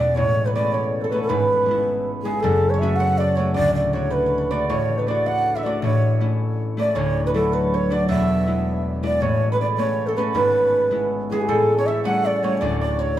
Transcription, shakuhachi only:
0, 0, Header, 1, 2, 480
1, 0, Start_track
1, 0, Tempo, 377358
1, 215, Time_signature, 6, 3, 24, 8
1, 16785, End_track
2, 0, Start_track
2, 0, Title_t, "Shakuhachi"
2, 0, Program_c, 0, 77
2, 0, Note_on_c, 0, 74, 87
2, 189, Note_on_c, 0, 73, 98
2, 208, Note_off_c, 0, 74, 0
2, 580, Note_on_c, 0, 71, 68
2, 599, Note_off_c, 0, 73, 0
2, 684, Note_off_c, 0, 71, 0
2, 692, Note_on_c, 0, 74, 88
2, 919, Note_on_c, 0, 73, 82
2, 938, Note_off_c, 0, 74, 0
2, 1286, Note_on_c, 0, 69, 73
2, 1293, Note_off_c, 0, 73, 0
2, 1379, Note_off_c, 0, 69, 0
2, 1387, Note_on_c, 0, 71, 82
2, 1537, Note_off_c, 0, 71, 0
2, 1556, Note_on_c, 0, 69, 71
2, 1630, Note_on_c, 0, 71, 107
2, 1649, Note_off_c, 0, 69, 0
2, 2626, Note_off_c, 0, 71, 0
2, 2826, Note_on_c, 0, 68, 90
2, 3059, Note_on_c, 0, 69, 105
2, 3078, Note_off_c, 0, 68, 0
2, 3431, Note_on_c, 0, 73, 74
2, 3450, Note_off_c, 0, 69, 0
2, 3549, Note_on_c, 0, 76, 99
2, 3568, Note_off_c, 0, 73, 0
2, 3763, Note_on_c, 0, 78, 103
2, 3782, Note_off_c, 0, 76, 0
2, 4044, Note_on_c, 0, 74, 96
2, 4063, Note_off_c, 0, 78, 0
2, 4269, Note_on_c, 0, 73, 86
2, 4288, Note_off_c, 0, 74, 0
2, 4505, Note_off_c, 0, 73, 0
2, 4512, Note_on_c, 0, 74, 110
2, 4758, Note_off_c, 0, 74, 0
2, 4766, Note_on_c, 0, 74, 81
2, 5002, Note_on_c, 0, 73, 85
2, 5021, Note_off_c, 0, 74, 0
2, 5243, Note_on_c, 0, 71, 83
2, 5262, Note_off_c, 0, 73, 0
2, 5744, Note_on_c, 0, 74, 84
2, 5763, Note_off_c, 0, 71, 0
2, 5970, Note_off_c, 0, 74, 0
2, 5978, Note_on_c, 0, 73, 93
2, 6334, Note_on_c, 0, 71, 60
2, 6353, Note_off_c, 0, 73, 0
2, 6461, Note_on_c, 0, 74, 94
2, 6480, Note_off_c, 0, 71, 0
2, 6697, Note_on_c, 0, 78, 104
2, 6716, Note_off_c, 0, 74, 0
2, 7065, Note_on_c, 0, 76, 80
2, 7084, Note_off_c, 0, 78, 0
2, 7168, Note_on_c, 0, 74, 75
2, 7187, Note_off_c, 0, 76, 0
2, 7402, Note_off_c, 0, 74, 0
2, 7422, Note_on_c, 0, 73, 92
2, 7992, Note_off_c, 0, 73, 0
2, 8645, Note_on_c, 0, 74, 92
2, 8856, Note_on_c, 0, 73, 100
2, 8875, Note_off_c, 0, 74, 0
2, 9229, Note_off_c, 0, 73, 0
2, 9236, Note_on_c, 0, 71, 66
2, 9286, Note_off_c, 0, 71, 0
2, 9346, Note_on_c, 0, 69, 81
2, 9575, Note_on_c, 0, 71, 84
2, 9594, Note_off_c, 0, 69, 0
2, 9851, Note_on_c, 0, 73, 88
2, 9870, Note_off_c, 0, 71, 0
2, 10072, Note_on_c, 0, 74, 97
2, 10091, Note_off_c, 0, 73, 0
2, 10279, Note_off_c, 0, 74, 0
2, 10287, Note_on_c, 0, 76, 100
2, 11225, Note_off_c, 0, 76, 0
2, 11509, Note_on_c, 0, 74, 91
2, 11716, Note_on_c, 0, 73, 101
2, 11735, Note_off_c, 0, 74, 0
2, 12105, Note_off_c, 0, 73, 0
2, 12114, Note_on_c, 0, 71, 69
2, 12214, Note_off_c, 0, 71, 0
2, 12222, Note_on_c, 0, 74, 88
2, 12298, Note_off_c, 0, 74, 0
2, 12426, Note_on_c, 0, 73, 87
2, 12805, Note_on_c, 0, 69, 74
2, 12824, Note_off_c, 0, 73, 0
2, 12911, Note_off_c, 0, 69, 0
2, 12918, Note_on_c, 0, 71, 82
2, 12995, Note_off_c, 0, 71, 0
2, 13155, Note_on_c, 0, 71, 103
2, 14100, Note_off_c, 0, 71, 0
2, 14377, Note_on_c, 0, 68, 78
2, 14516, Note_on_c, 0, 67, 75
2, 14535, Note_off_c, 0, 68, 0
2, 14591, Note_on_c, 0, 69, 103
2, 14610, Note_off_c, 0, 67, 0
2, 14973, Note_off_c, 0, 69, 0
2, 14980, Note_on_c, 0, 73, 88
2, 15088, Note_on_c, 0, 76, 93
2, 15107, Note_off_c, 0, 73, 0
2, 15313, Note_off_c, 0, 76, 0
2, 15321, Note_on_c, 0, 78, 99
2, 15588, Note_on_c, 0, 74, 107
2, 15607, Note_off_c, 0, 78, 0
2, 15818, Note_on_c, 0, 73, 98
2, 15837, Note_off_c, 0, 74, 0
2, 15991, Note_off_c, 0, 73, 0
2, 15991, Note_on_c, 0, 73, 83
2, 16026, Note_on_c, 0, 74, 105
2, 16046, Note_off_c, 0, 73, 0
2, 16296, Note_off_c, 0, 74, 0
2, 16303, Note_on_c, 0, 74, 85
2, 16548, Note_on_c, 0, 73, 100
2, 16567, Note_off_c, 0, 74, 0
2, 16785, Note_off_c, 0, 73, 0
2, 16785, End_track
0, 0, End_of_file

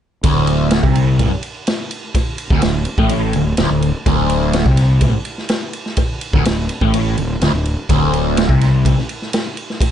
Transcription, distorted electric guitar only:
0, 0, Header, 1, 2, 480
1, 0, Start_track
1, 0, Tempo, 478469
1, 233, Time_signature, 4, 2, 24, 8
1, 9946, End_track
2, 0, Start_track
2, 0, Title_t, "Distorted electric guitar"
2, 0, Program_c, 0, 30
2, 240, Note_on_c, 0, 38, 94
2, 829, Note_off_c, 0, 38, 0
2, 840, Note_on_c, 0, 48, 97
2, 1309, Note_off_c, 0, 48, 0
2, 2522, Note_on_c, 0, 38, 97
2, 2627, Note_off_c, 0, 38, 0
2, 2640, Note_on_c, 0, 38, 76
2, 2828, Note_off_c, 0, 38, 0
2, 2997, Note_on_c, 0, 45, 104
2, 3348, Note_off_c, 0, 45, 0
2, 3368, Note_on_c, 0, 38, 67
2, 3552, Note_off_c, 0, 38, 0
2, 3604, Note_on_c, 0, 38, 96
2, 3707, Note_off_c, 0, 38, 0
2, 3719, Note_on_c, 0, 38, 72
2, 3908, Note_off_c, 0, 38, 0
2, 4082, Note_on_c, 0, 38, 97
2, 4670, Note_off_c, 0, 38, 0
2, 4678, Note_on_c, 0, 48, 97
2, 5148, Note_off_c, 0, 48, 0
2, 6367, Note_on_c, 0, 38, 102
2, 6472, Note_off_c, 0, 38, 0
2, 6485, Note_on_c, 0, 38, 73
2, 6671, Note_off_c, 0, 38, 0
2, 6838, Note_on_c, 0, 45, 96
2, 7188, Note_off_c, 0, 45, 0
2, 7203, Note_on_c, 0, 38, 68
2, 7390, Note_off_c, 0, 38, 0
2, 7442, Note_on_c, 0, 38, 96
2, 7550, Note_off_c, 0, 38, 0
2, 7561, Note_on_c, 0, 38, 75
2, 7749, Note_off_c, 0, 38, 0
2, 7923, Note_on_c, 0, 38, 94
2, 8511, Note_off_c, 0, 38, 0
2, 8518, Note_on_c, 0, 48, 93
2, 8989, Note_off_c, 0, 48, 0
2, 9946, End_track
0, 0, End_of_file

